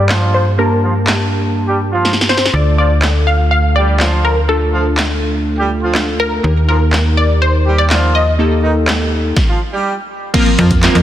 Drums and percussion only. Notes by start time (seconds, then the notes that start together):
0.09 snare, clap
1.07 snare, clap
2.05 snare
2.13 snare
2.21 snare
2.29 snare
2.37 snare
2.45 snare
3.02 snare, clap
4.00 snare, clap
4.98 snare, clap
5.95 snare, clap
6.93 snare, clap
7.90 snare, clap
8.88 snare, clap
9.37 kick, snare
10.34 kick, closed hi-hat, crash
10.46 closed hi-hat
10.59 closed hi-hat
10.71 kick, closed hi-hat
10.83 snare, clap, closed hi-hat
10.95 closed hi-hat